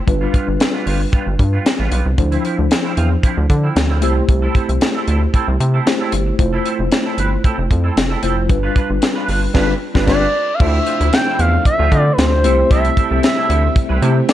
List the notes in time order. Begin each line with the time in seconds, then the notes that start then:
0.07 G1 G3 D4 F4 B4, muted clean electric guitar stroke, kick, closed hi-hat
0.21 G3 B3 F4
0.33 G3 B3 F4, kick, closed hi-hat
0.48 G1, muted clean electric guitar stroke
0.60 muted clean electric guitar stroke, snare, closed hi-hat
0.74 G3 B3 F4
0.86 G1 G3 B3 F4, open hi-hat
1.00 muted clean electric guitar stroke
1.12 G3 B3 F4, kick, closed hi-hat
1.27 G1, muted clean electric guitar stroke
1.39 G2, muted clean electric guitar stroke, kick, closed hi-hat
1.53 G3 B3 F4
1.65 muted clean electric guitar stroke, snare, closed hi-hat
1.79 A1 G3 B3 F4
1.91 B1 G3 B3 F4, closed hi-hat
2.06 C2, muted clean electric guitar stroke
2.17 D2 F3 D4 E4 C5, muted clean electric guitar stroke, kick, closed hi-hat
2.32 F3 C4 E4, closed hi-hat
2.44 F3 C4 E4, closed hi-hat
2.58 D2, muted clean electric guitar stroke
2.71 muted clean electric guitar stroke, snare, closed hi-hat
2.84 F3 C4 E4
2.97 E2 F3 C4 F4, closed hi-hat
3.11 muted clean electric guitar stroke
3.23 F3 C4 E4, kick, closed hi-hat
3.37 D2, muted clean electric guitar stroke
3.50 D3, muted clean electric guitar stroke, kick, closed hi-hat
3.63 F3 C4 E4
3.76 D2, muted clean electric guitar stroke, snare, closed hi-hat
3.90 F3 C4 E4
4.02 C2 A3 C4 E4 G4 A4 C5, closed hi-hat
4.16 muted clean electric guitar stroke
4.28 C2, muted clean electric guitar stroke, kick, closed hi-hat
4.42 C4 E4 A4
4.54 C4 E4 A4, kick, closed hi-hat
4.69 C2, muted clean electric guitar stroke, closed hi-hat
4.81 muted clean electric guitar stroke, snare, closed hi-hat
4.95 C4 E4 A4
5.07 D2 C4 E4 A4, closed hi-hat
5.21 muted clean electric guitar stroke
5.34 C4 E4 A4, kick, closed hi-hat
5.48 C2, muted clean electric guitar stroke
5.60 C3, muted clean electric guitar stroke, closed hi-hat
5.74 C4 E4 A4
5.86 A3 E4 G4 C5, muted clean electric guitar stroke, snare, closed hi-hat
6.00 C4 E4 A4
6.12 G1, muted clean electric guitar stroke, closed hi-hat
6.26 muted clean electric guitar stroke
6.38 F1 A3 E4 F4 C5, muted clean electric guitar stroke, kick, closed hi-hat
6.53 C4 E4 A4
6.65 C4 E4 A4, closed hi-hat
6.79 F1, muted clean electric guitar stroke
6.92 muted clean electric guitar stroke, snare, closed hi-hat
7.05 C4 E4 A4
7.18 G1 C4 E4 B4, closed hi-hat
7.32 muted clean electric guitar stroke
7.44 C4 E4 A4, kick, closed hi-hat
7.58 F1, muted clean electric guitar stroke
7.70 F2, muted clean electric guitar stroke, kick, closed hi-hat
7.84 C4 E4 A4
7.96 F1, muted clean electric guitar stroke, snare, closed hi-hat
8.10 C4 E4 A4
8.23 F1 A3 C4 E4 F4 A4 C5, closed hi-hat
8.37 muted clean electric guitar stroke
8.49 G1 G3 D4 F4 B4, muted clean electric guitar stroke, kick, closed hi-hat
8.63 D4 F4 B4
8.75 D4 F4 B4, kick, closed hi-hat
8.89 G1, muted clean electric guitar stroke
9.02 muted clean electric guitar stroke, snare, closed hi-hat
9.16 D4 F4 B4
9.28 G1 D4 F4 B4, open hi-hat
9.42 muted clean electric guitar stroke
9.54 G1 G3 D4 F4 B4, kick, snare, crash
9.94 G1 G3 D4 F4 B4, kick, snare
10.07 G1 G3 D4 F4 B4 D5, kick, snare, crash
10.54 F5
10.59 D2 C3 F3 A3 C4 D4 E4 F4 C5 E5, kick, crash
10.86 F3 C4 F4, closed hi-hat
11.00 D2 F3 C4 E4, closed hi-hat
11.12 G5, muted clean electric guitar stroke, snare, closed hi-hat
11.26 F3 C4 E4
11.38 E2 F3 C4 E4 F5, closed hi-hat
11.53 muted clean electric guitar stroke
11.65 E5, muted clean electric guitar stroke, kick, closed hi-hat
11.79 D2 F3 C4 F4
11.91 D3 F3 C4 F4, kick, closed hi-hat
12.00 D5
12.06 muted clean electric guitar stroke
12.12 B4
12.18 D2 C5, snare, closed hi-hat
12.32 muted clean electric guitar stroke
12.44 C2 C3 G3 A3 C4 E4 G4 A4 C5, closed hi-hat
12.58 muted clean electric guitar stroke
12.70 C2 C4 E4 A4 E5, kick, closed hi-hat
12.85 closed hi-hat
12.97 C4 E4 A4, kick, closed hi-hat
13.11 C2 C4 E4 A4
13.23 E5, muted clean electric guitar stroke, snare, closed hi-hat
13.37 C4 E4 A4
13.49 D2 C4 E4 A4, closed hi-hat
13.63 muted clean electric guitar stroke
13.75 muted clean electric guitar stroke, kick, closed hi-hat
13.89 C2 C4 E4 B4
14.02 C3 A3 C4 E4 G4 A4 C5, closed hi-hat
14.16 muted clean electric guitar stroke
14.28 D5, muted clean electric guitar stroke, snare, closed hi-hat